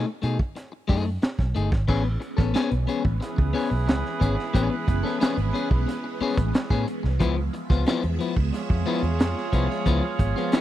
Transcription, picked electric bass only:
0.24 0.37 B2 loud
0.89 1.17 F#2 medium
1.39 1.53 B1 medium
1.56 1.70 G1 medium
1.72 1.86 G#1 medium
1.89 2.16 A1 loud
2.38 2.52 A1 medium
2.72 2.85 B1 medium
3.05 3.19 A1 medium
3.38 3.52 C#2 medium
3.71 3.88 B1 medium
3.88 4.02 C#2 loud
4.21 4.35 G#1 medium
4.54 4.68 A1 loud
4.88 5.01 F#1 loud
5.38 5.51 G#1 medium
5.71 5.84 B1 loud
6.21 muted picked electric bass stroke soft
6.38 6.51 A1 medium
6.70 6.84 A2 loud
7.04 7.21 C2 medium
7.21 7.48 C#2 loud
7.70 7.84 C#2 medium
8.04 8.17 E2 medium
8.37 8.50 C#2 medium
8.70 8.83 F2 medium
9.03 9.20 E2 medium
9.20 9.33 F2 loud
9.53 9.66 C2 medium
9.86 10.00 C#2 loud
10.19 10.33 G#1 loud

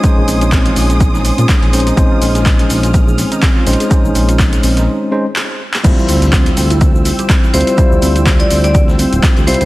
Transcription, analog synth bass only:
0.17 0.24 A#1 medium
0.28 0.70 A#1 medium
0.76 1.31 A#1 medium
1.38 1.45 A#2 loud
1.62 1.91 A#1 medium
1.97 2.06 A#1 loud
2.22 2.64 A#1 medium
2.70 3.24 A#1 medium
3.67 3.75 A#1 medium
4.04 4.11 A#1 medium
4.15 4.57 A#1 medium
4.63 4.88 A#1 medium
5.84 5.93 D2 loud
6.09 6.51 D2 medium
6.57 7.11 D2 medium
7.54 7.62 D2 medium
7.91 7.98 D2 medium
8.02 8.44 D2 medium
8.51 9.05 D2 medium
9.12 9.19 D1 loud
9.37 9.49 D2 medium
9.47 9.56 C2 medium
9.61 9.65 D2 loud

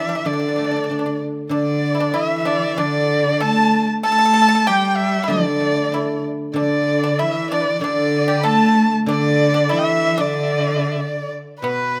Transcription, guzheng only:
0.00 0.88 G3 medium
0.25 1.48 D3 soft
0.58 1.85 A3 soft
0.90 2.16 D4 soft
1.49 2.76 D3 medium
2.77 4.66 D3 medium
5.28 6.52 D3 medium
5.60 6.88 A3 soft
5.92 7.20 D4 soft
6.53 7.80 D3 medium
7.81 9.05 D3 medium
9.06 10.98 D3 medium
11.62 12.00 B2 soft

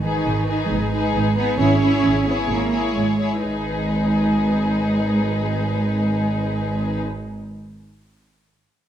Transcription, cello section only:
0.04 0.70 D#3 medium
0.71 1.37 G#3 medium
1.37 1.59 B3 medium
1.59 2.25 C#4 medium
2.26 2.49 B3 medium
2.50 2.95 A#3 medium
2.96 3.20 G#3 soft
3.44 6.99 G#3 soft

